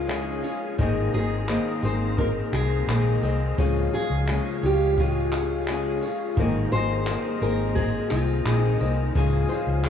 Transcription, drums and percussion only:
0, 0, Header, 1, 2, 480
1, 0, Start_track
1, 0, Key_signature, -4, "major"
1, 0, Tempo, 696864
1, 546, Time_signature, 4, 2, 24, 8
1, 6812, End_track
2, 0, Start_track
2, 0, Title_t, "Drums"
2, 67, Note_on_c, 9, 39, 108
2, 136, Note_off_c, 9, 39, 0
2, 304, Note_on_c, 9, 54, 67
2, 373, Note_off_c, 9, 54, 0
2, 543, Note_on_c, 9, 36, 109
2, 612, Note_off_c, 9, 36, 0
2, 783, Note_on_c, 9, 54, 61
2, 852, Note_off_c, 9, 54, 0
2, 1023, Note_on_c, 9, 39, 94
2, 1092, Note_off_c, 9, 39, 0
2, 1267, Note_on_c, 9, 54, 62
2, 1336, Note_off_c, 9, 54, 0
2, 1503, Note_on_c, 9, 36, 100
2, 1572, Note_off_c, 9, 36, 0
2, 1746, Note_on_c, 9, 39, 90
2, 1747, Note_on_c, 9, 54, 57
2, 1815, Note_off_c, 9, 39, 0
2, 1816, Note_off_c, 9, 54, 0
2, 1992, Note_on_c, 9, 39, 111
2, 2061, Note_off_c, 9, 39, 0
2, 2230, Note_on_c, 9, 54, 71
2, 2299, Note_off_c, 9, 54, 0
2, 2468, Note_on_c, 9, 36, 109
2, 2537, Note_off_c, 9, 36, 0
2, 2711, Note_on_c, 9, 54, 63
2, 2780, Note_off_c, 9, 54, 0
2, 2948, Note_on_c, 9, 39, 105
2, 3016, Note_off_c, 9, 39, 0
2, 3192, Note_on_c, 9, 54, 66
2, 3261, Note_off_c, 9, 54, 0
2, 3429, Note_on_c, 9, 36, 96
2, 3498, Note_off_c, 9, 36, 0
2, 3667, Note_on_c, 9, 39, 84
2, 3668, Note_on_c, 9, 54, 60
2, 3736, Note_off_c, 9, 39, 0
2, 3737, Note_off_c, 9, 54, 0
2, 3908, Note_on_c, 9, 39, 114
2, 3977, Note_off_c, 9, 39, 0
2, 4148, Note_on_c, 9, 54, 70
2, 4217, Note_off_c, 9, 54, 0
2, 4389, Note_on_c, 9, 36, 110
2, 4457, Note_off_c, 9, 36, 0
2, 4628, Note_on_c, 9, 54, 60
2, 4697, Note_off_c, 9, 54, 0
2, 4867, Note_on_c, 9, 39, 94
2, 4936, Note_off_c, 9, 39, 0
2, 5109, Note_on_c, 9, 54, 61
2, 5178, Note_off_c, 9, 54, 0
2, 5346, Note_on_c, 9, 36, 100
2, 5415, Note_off_c, 9, 36, 0
2, 5584, Note_on_c, 9, 39, 89
2, 5585, Note_on_c, 9, 54, 58
2, 5653, Note_off_c, 9, 39, 0
2, 5654, Note_off_c, 9, 54, 0
2, 5828, Note_on_c, 9, 39, 114
2, 5897, Note_off_c, 9, 39, 0
2, 6066, Note_on_c, 9, 54, 64
2, 6135, Note_off_c, 9, 54, 0
2, 6305, Note_on_c, 9, 36, 109
2, 6374, Note_off_c, 9, 36, 0
2, 6544, Note_on_c, 9, 54, 58
2, 6613, Note_off_c, 9, 54, 0
2, 6779, Note_on_c, 9, 39, 100
2, 6812, Note_off_c, 9, 39, 0
2, 6812, End_track
0, 0, End_of_file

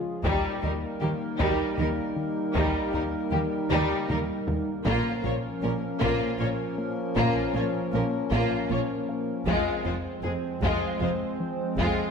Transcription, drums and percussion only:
0, 0, Header, 1, 2, 480
1, 0, Start_track
1, 0, Tempo, 769231
1, 150, Time_signature, 6, 3, 24, 8
1, 7555, End_track
2, 0, Start_track
2, 0, Title_t, "Taiko and cinematic ensemble drums"
2, 149, Note_on_c, 9, 41, 87
2, 212, Note_off_c, 9, 41, 0
2, 870, Note_on_c, 9, 41, 75
2, 933, Note_off_c, 9, 41, 0
2, 1590, Note_on_c, 9, 41, 87
2, 1652, Note_off_c, 9, 41, 0
2, 2309, Note_on_c, 9, 47, 70
2, 2371, Note_off_c, 9, 47, 0
2, 2552, Note_on_c, 9, 47, 74
2, 2614, Note_off_c, 9, 47, 0
2, 2790, Note_on_c, 9, 43, 85
2, 2852, Note_off_c, 9, 43, 0
2, 3030, Note_on_c, 9, 41, 90
2, 3092, Note_off_c, 9, 41, 0
2, 3752, Note_on_c, 9, 41, 79
2, 3814, Note_off_c, 9, 41, 0
2, 4471, Note_on_c, 9, 41, 85
2, 4534, Note_off_c, 9, 41, 0
2, 5190, Note_on_c, 9, 41, 77
2, 5253, Note_off_c, 9, 41, 0
2, 5912, Note_on_c, 9, 41, 89
2, 5975, Note_off_c, 9, 41, 0
2, 6631, Note_on_c, 9, 41, 71
2, 6694, Note_off_c, 9, 41, 0
2, 7352, Note_on_c, 9, 41, 83
2, 7414, Note_off_c, 9, 41, 0
2, 7555, End_track
0, 0, End_of_file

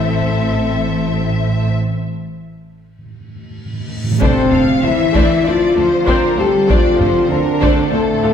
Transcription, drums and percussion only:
0, 0, Header, 1, 2, 480
1, 0, Start_track
1, 0, Key_signature, -1, "minor"
1, 0, Tempo, 617284
1, 1364, Time_signature, 4, 2, 24, 8
1, 6482, End_track
2, 0, Start_track
2, 0, Title_t, "Taiko and cinematic ensemble drums"
2, 166, Note_on_c, 9, 41, 36
2, 244, Note_off_c, 9, 41, 0
2, 3283, Note_on_c, 9, 41, 87
2, 3361, Note_off_c, 9, 41, 0
2, 3521, Note_on_c, 9, 45, 47
2, 3599, Note_off_c, 9, 45, 0
2, 4001, Note_on_c, 9, 41, 74
2, 4079, Note_off_c, 9, 41, 0
2, 4722, Note_on_c, 9, 41, 72
2, 4800, Note_off_c, 9, 41, 0
2, 5203, Note_on_c, 9, 41, 85
2, 5281, Note_off_c, 9, 41, 0
2, 5439, Note_on_c, 9, 45, 43
2, 5517, Note_off_c, 9, 45, 0
2, 5922, Note_on_c, 9, 41, 86
2, 6000, Note_off_c, 9, 41, 0
2, 6482, End_track
0, 0, End_of_file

